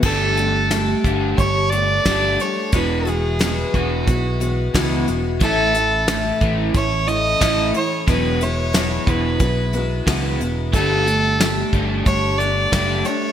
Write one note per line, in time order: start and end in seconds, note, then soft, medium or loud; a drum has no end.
0.02 0.94 G1 medium
0.02 0.37 G3 medium
0.02 0.38 A3 medium
0.02 0.38 D4 medium
0.02 0.36 G4 medium
0.02 1.00 A4 loud
0.02 kick loud
0.02 crash medium
0.37 0.67 G3 medium
0.37 0.71 A3 soft
0.37 0.72 D4 soft
0.37 0.71 G4 medium
0.37 closed hi-hat medium
0.71 1.37 G3 medium
0.71 1.38 A3 medium
0.71 1.39 D4 medium
0.71 1.40 G4 medium
0.71 snare loud
0.71 closed hi-hat medium
1.04 1.35 G1 medium
1.04 1.36 G3 medium
1.04 1.36 A3 medium
1.04 1.36 D4 loud
1.04 kick medium
1.04 closed hi-hat medium
1.38 1.98 G1 loud
1.38 1.72 G3 medium
1.38 1.73 A3 medium
1.38 1.72 D4 medium
1.38 1.70 G4 medium
1.38 1.71 C#5 medium
1.38 kick medium
1.38 closed hi-hat medium
1.70 2.02 G3 medium
1.70 2.05 G4 soft
1.70 2.42 D5 loud
1.70 closed hi-hat medium
1.74 2.04 A3 soft
1.74 2.06 D4 soft
2.05 2.36 G1 medium
2.05 2.39 G3 medium
2.05 2.39 A3 medium
2.05 2.39 D4 medium
2.05 2.38 G4 medium
2.05 kick medium
2.05 snare loud
2.05 closed hi-hat medium
2.39 2.70 G3 medium
2.39 2.73 A3 soft
2.39 2.73 D4 soft
2.39 2.73 G4 soft
2.39 2.78 C#5 medium
2.39 closed hi-hat medium
2.72 3.63 E1 loud
2.72 3.06 E2 medium
2.72 3.06 B2 medium
2.72 3.07 E3 medium
2.72 3.07 G#3 medium
2.72 3.05 B3 medium
2.72 3.04 F#4 medium
2.72 3.10 B4 medium
2.72 kick loud
2.72 closed hi-hat medium
3.05 3.37 E2 medium
3.05 3.38 B2 medium
3.05 3.38 E3 soft
3.05 3.39 G#3 soft
3.05 3.39 B3 medium
3.05 3.39 F#4 medium
3.05 3.77 G#4 medium
3.05 closed hi-hat medium
3.39 4.06 E2 medium
3.39 4.07 B2 medium
3.39 4.07 E3 medium
3.39 4.06 G#3 medium
3.39 4.07 B3 medium
3.39 4.08 F#4 medium
3.39 snare loud
3.39 closed hi-hat medium
3.74 4.04 E1 medium
3.74 4.05 E2 medium
3.74 4.05 B2 medium
3.74 4.06 E3 medium
3.74 4.75 F#4 medium
3.74 kick medium
3.74 closed hi-hat medium
4.07 4.67 B1 loud
4.07 4.38 E2 medium
4.07 4.37 B2 medium
4.07 4.41 E3 medium
4.07 4.41 G#3 medium
4.07 4.40 B3 medium
4.07 4.39 F#4 medium
4.07 kick medium
4.07 closed hi-hat medium
4.40 4.71 E2 medium
4.40 4.71 B2 medium
4.40 4.74 E3 soft
4.40 4.74 G#3 medium
4.40 4.74 B3 soft
4.40 4.74 F#4 soft
4.40 closed hi-hat medium
4.74 5.04 C#2 medium
4.74 5.07 E2 medium
4.74 5.08 B2 medium
4.74 5.08 E3 medium
4.74 5.08 G#3 loud
4.74 5.08 B3 loud
4.74 5.08 F#4 loud
4.74 kick medium
4.74 snare loud
4.74 closed hi-hat medium
5.07 5.41 E1 medium
5.07 5.37 E2 medium
5.07 5.38 B2 medium
5.07 5.43 G#3 medium
5.07 5.42 B3 medium
5.07 5.41 F#4 medium
5.07 closed hi-hat medium
5.12 5.41 E3 soft
5.40 6.30 A1 loud
5.40 5.75 A2 medium
5.40 5.75 E3 medium
5.40 5.75 A3 medium
5.40 5.75 C#4 medium
5.40 6.38 A4 loud
5.40 kick loud
5.40 closed hi-hat medium
5.44 5.73 E4 medium
5.73 6.04 A2 medium
5.73 6.04 E3 medium
5.73 6.09 C#4 soft
5.73 6.08 E4 medium
5.73 closed hi-hat medium
5.78 6.09 A3 soft
6.08 6.75 A2 medium
6.08 6.74 E3 medium
6.08 6.75 A3 medium
6.08 6.76 C#4 medium
6.08 6.77 E4 medium
6.08 snare loud
6.08 closed hi-hat medium
6.41 6.71 A1 loud
6.41 6.72 A2 medium
6.41 6.72 E3 loud
6.41 6.73 A3 loud
6.41 kick medium
6.41 closed hi-hat medium
6.74 7.34 A1 loud
6.74 7.04 A2 medium
6.74 7.08 E3 medium
6.74 7.09 A3 medium
6.74 7.09 C#4 medium
6.74 7.08 E4 medium
6.74 7.10 C#5 loud
6.74 kick medium
6.74 closed hi-hat medium
7.07 7.37 A2 medium
7.07 7.38 E3 medium
7.07 7.42 C#4 soft
7.07 7.42 E4 medium
7.07 7.75 D#5 loud
7.07 closed hi-hat medium
7.12 7.43 A3 soft
7.41 7.71 A1 medium
7.41 7.75 A2 medium
7.41 7.76 E3 medium
7.41 7.76 A3 medium
7.41 7.75 C#4 medium
7.41 7.74 E4 medium
7.41 kick medium
7.41 snare loud
7.41 closed hi-hat medium
7.73 8.04 A2 medium
7.73 8.04 E3 medium
7.73 8.09 C#4 soft
7.73 8.08 E4 medium
7.73 8.07 C#5 medium
7.73 closed hi-hat medium
7.78 8.09 A3 soft
8.08 8.97 E1 loud
8.08 8.41 E2 medium
8.08 8.41 B2 medium
8.08 8.39 E3 medium
8.08 8.42 F#3 medium
8.08 8.42 G#3 medium
8.08 8.42 B3 medium
8.08 8.40 E4 medium
8.08 8.44 B4 medium
8.08 kick loud
8.08 closed hi-hat medium
8.40 8.70 E2 medium
8.40 8.70 B2 medium
8.40 8.74 G#3 medium
8.40 8.74 B3 soft
8.40 8.74 E4 medium
8.40 9.10 C#5 medium
8.40 closed hi-hat medium
8.45 8.73 F#3 soft
8.73 9.40 E2 medium
8.73 9.41 B2 medium
8.73 9.39 F#3 medium
8.73 9.40 G#3 medium
8.73 9.41 B3 medium
8.73 9.41 E4 medium
8.73 snare loud
8.73 closed hi-hat medium
9.07 9.37 E1 medium
9.07 9.38 E2 medium
9.07 9.38 B2 loud
9.07 9.39 E3 loud
9.07 10.08 B4 medium
9.07 kick medium
9.07 closed hi-hat medium
9.40 10.00 B1 loud
9.40 9.70 E2 medium
9.40 9.70 B2 medium
9.40 9.73 F#3 medium
9.40 9.74 G#3 medium
9.40 9.74 B3 medium
9.40 9.73 E4 medium
9.40 kick medium
9.40 closed hi-hat medium
9.73 10.04 E2 medium
9.73 10.04 B2 medium
9.73 10.07 G#3 soft
9.73 10.08 B3 medium
9.73 10.07 E4 soft
9.73 closed hi-hat medium
9.77 10.07 F#3 soft
10.07 10.37 C#2 medium
10.07 10.40 E2 medium
10.07 10.41 B2 medium
10.07 10.38 E3 medium
10.07 10.41 F#3 medium
10.07 10.41 G#3 medium
10.07 10.41 B3 loud
10.07 10.41 E4 medium
10.07 kick medium
10.07 snare loud
10.07 closed hi-hat medium
10.40 10.73 E1 medium
10.40 10.70 E2 medium
10.40 10.70 B2 medium
10.40 10.75 B3 soft
10.40 10.74 E4 soft
10.40 closed hi-hat medium
10.44 10.74 F#3 soft
10.44 10.75 G#3 soft
10.73 11.62 G1 loud
10.73 11.07 G3 medium
10.73 11.07 A3 medium
10.73 11.07 D4 medium
10.73 11.05 G4 medium
10.73 11.69 A4 loud
10.73 kick medium
10.73 closed hi-hat medium
11.06 11.37 G3 medium
11.06 11.40 A3 soft
11.06 11.41 D4 soft
11.06 11.40 G4 medium
11.06 closed hi-hat medium
11.40 12.04 G3 medium
11.40 12.06 A3 medium
11.40 12.07 D4 medium
11.40 12.08 G4 medium
11.40 snare loud
11.40 closed hi-hat medium
11.73 12.03 G1 medium
11.73 12.04 G3 medium
11.73 12.04 A3 medium
11.73 12.05 D4 medium
11.73 kick medium
11.73 closed hi-hat medium
12.06 12.65 G1 medium
12.06 12.39 G3 medium
12.06 12.40 A3 medium
12.06 12.40 D4 medium
12.06 12.40 C#5 loud
12.06 kick loud
12.06 closed hi-hat medium
12.10 12.38 G4 medium
12.38 12.69 G3 medium
12.38 12.73 D4 medium
12.38 12.72 G4 soft
12.38 13.07 D5 loud
12.38 closed hi-hat medium
12.42 12.72 A3 soft
12.72 13.02 F#1 medium
12.72 13.06 G3 medium
12.72 13.06 A3 medium
12.72 13.06 D4 medium
12.72 13.04 G4 medium
12.72 kick medium
12.72 snare loud
12.72 closed hi-hat medium
13.05 13.32 G3 medium
13.05 13.32 A3 soft
13.05 13.32 D4 soft
13.05 13.32 G4 medium
13.05 13.32 C#5 loud
13.05 snare soft
13.05 closed hi-hat medium